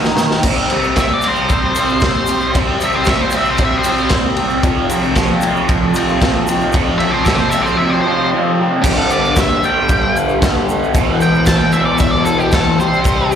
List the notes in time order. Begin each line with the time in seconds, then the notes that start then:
Already playing: D#3
0.04 snare, shaker
0.17 snare, shaker
0.31 snare
0.43 C3 G3, kick, crash, shaker
0.47 C4
0.70 C3 G3 C4, ride
0.83 shaker
0.96 C3 G3 C4, kick, snare, ride, shaker
1.00 E5
1.13 D5
1.22 C3 G3, ride, shaker
1.26 C4 C5
1.36 shaker
1.49 C3 G3 C4, kick, ride, shaker
1.75 C3 G3, ride, shaker
1.80 C4
1.89 shaker
2.00 C3, kick, snare, ride, shaker
2.04 G3 C4 C5
2.27 C3 G3, ride, shaker
2.31 C4
2.41 shaker
2.54 C3 G3 C4, kick, ride, shaker
2.81 C3 G3 C4 E5, ride, shaker
2.92 C5, shaker
3.05 C3 G3 C4 E5, kick, snare, ride, shaker
3.22 C5
3.30 C3 G3, ride, shaker
3.35 C4 E5
3.45 shaker
3.50 C5
3.58 C3 G3 C4, kick, ride, shaker
3.65 E5
3.78 C5
3.84 C3 G3 C4, ride, shaker
3.89 C5
3.98 shaker
4.09 C3 G3 C4, kick, snare, ride, shaker
4.37 C3 G3 C4, ride
4.50 shaker
4.63 F2 C3 F3, kick, ride, shaker
4.89 F2 C3 F3, ride, shaker
5.04 shaker
5.15 F2 C3 F3, kick, snare, ride, shaker
5.41 F2 C3 F3, ride, shaker
5.56 shaker
5.68 F2 C3 F3, kick, ride, shaker
5.94 F2 C3 F3, ride, shaker
6.08 shaker
6.21 F2 C3 F3, kick, snare, ride, shaker
6.47 F2 C3 F3, ride, shaker
6.61 shaker
6.72 F2 C3 F3, kick, ride, shaker
6.99 F2 C3 F3 E5, ride
7.12 C5
7.24 F2 E5, kick, snare, ride, shaker
7.28 C3 F3
7.35 C5
7.50 E5, ride, shaker
7.54 F2 C3 F3
7.62 C5
7.67 shaker
7.77 F2 C3 E5
7.81 F3
7.90 C5
8.02 C5
8.06 F2 C3 F3
8.34 F2 C3 F3
8.60 F2 C3 F3
8.83 G2 G4, kick, crash, shaker
8.87 D3 G3
8.97 A4
9.10 D5, shaker
9.24 shaker
9.36 kick, snare, crash, shaker
9.40 E5
9.63 D3 G3 G5, shaker
9.68 G2
9.89 kick, crash, shaker
10.16 shaker
10.29 shaker
10.41 G2 D3, kick, snare, crash, shaker
10.45 G3
10.69 shaker
10.84 shaker
10.94 E2 B2 E3, kick, crash, shaker
11.21 G5, shaker
11.35 shaker
11.46 A5, kick, snare, crash, shaker
11.58 G5
11.72 B2 E3 E5, shaker
11.78 E2
11.85 D5
11.98 E5, kick, crash, shaker
12.11 D5
12.25 A4, shaker
12.38 G4, shaker
12.52 E2 B2 A4, kick, snare, crash, shaker
12.56 E3
12.79 C3 G3 C5, shaker
12.83 C4
12.93 shaker
13.04 kick, crash, shaker
13.32 shaker